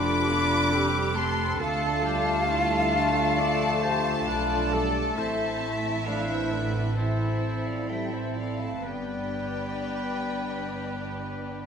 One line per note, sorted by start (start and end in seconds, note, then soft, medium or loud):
0.00 1.56 F1 medium
0.00 0.70 F3 medium
0.00 0.27 A3 medium
0.00 0.98 D4 loud
0.00 0.29 F4 medium
0.00 0.27 G4 medium
0.00 0.71 A4 medium
0.00 1.62 B4 medium
0.00 1.17 B5 loud
0.00 1.15 D6 loud
0.27 0.71 B3 medium
0.27 0.71 F4 medium
0.27 0.71 G4 medium
0.71 1.15 G3 medium
0.71 1.60 C4 medium
0.71 1.60 G4 medium
0.71 1.16 G4 medium
0.71 1.19 A4 medium
1.15 1.58 A3 medium
1.15 1.59 C4 medium
1.15 1.62 G4 medium
1.15 2.49 A4 medium
1.15 1.63 A5 medium
1.15 1.60 C6 loud
1.59 4.23 D2 medium
1.59 2.03 A3 medium
1.59 5.17 A3 loud
1.59 2.46 D4 medium
1.59 3.35 F4 medium
1.59 2.52 F4 medium
1.59 2.04 A4 medium
1.59 3.35 A4 medium
1.59 4.90 F5 loud
1.59 5.13 A5 loud
2.03 3.37 G3 medium
2.03 2.48 G4 medium
2.48 4.23 D4 medium
2.48 2.97 E4 medium
2.48 3.37 F4 medium
2.48 3.41 A4 medium
2.95 3.40 D4 medium
3.37 4.26 F3 medium
3.37 4.90 F4 medium
3.37 6.04 A4 medium
3.37 3.83 A4 medium
3.37 3.82 D5 medium
3.37 3.84 D5 medium
3.82 4.27 G4 medium
3.82 4.26 C5 medium
3.82 4.14 C5 medium
4.26 5.15 B1 medium
4.26 4.71 F3 medium
4.26 5.17 D4 medium
4.26 4.72 F4 medium
4.26 4.75 B4 medium
4.26 5.14 D5 medium
4.72 5.17 G3 medium
4.72 5.20 A4 medium
4.72 5.17 A4 medium
5.16 8.83 A1 medium
5.16 5.60 A3 medium
5.16 6.06 A3 medium
5.16 6.05 C4 medium
5.16 5.62 C4 medium
5.16 6.03 E4 medium
5.16 5.80 C5 medium
5.16 6.93 E5 medium
5.16 6.10 E5 medium
5.16 6.05 A5 loud
5.61 6.94 A3 medium
5.61 6.96 E4 medium
6.05 6.30 F3 medium
6.05 6.96 C4 medium
6.05 7.00 D4 medium
6.05 6.94 A4 medium
6.05 6.93 B4 medium
6.05 6.30 D5 medium
6.05 6.28 F5 medium
6.30 6.52 E3 medium
6.30 6.53 C5 medium
6.30 6.52 E5 medium
6.52 6.97 D3 medium
6.52 7.00 B4 medium
6.52 6.97 D5 medium
6.97 7.65 E3 medium
6.97 7.86 C4 medium
6.97 8.83 C4 medium
6.97 7.86 E4 medium
6.97 8.79 E4 medium
6.97 7.86 A4 medium
6.97 7.88 C5 medium
6.97 7.68 C5 medium
6.97 7.65 E5 medium
7.66 7.88 F3 medium
7.66 7.91 D5 medium
7.66 7.88 F5 medium
7.87 8.12 G3 medium
7.87 8.80 C4 medium
7.87 8.80 E4 medium
7.87 8.82 A4 medium
7.87 8.80 A4 medium
7.87 8.15 E5 medium
7.87 8.12 G5 medium
8.11 8.35 E3 medium
8.11 8.38 C5 medium
8.11 8.34 E5 medium
8.35 8.58 F3 medium
8.35 8.61 D5 medium
8.35 8.59 F5 medium
8.60 8.83 A3 medium
8.60 8.83 F5 medium
8.60 8.83 A5 medium
8.81 11.66 G1 medium
8.81 11.66 G3 medium
8.81 11.66 B3 soft
8.81 11.66 B3 medium
8.81 11.66 D4 medium
8.81 11.66 G4 medium
8.81 11.66 B4 medium
8.81 11.66 G5 medium
8.87 11.66 D5 medium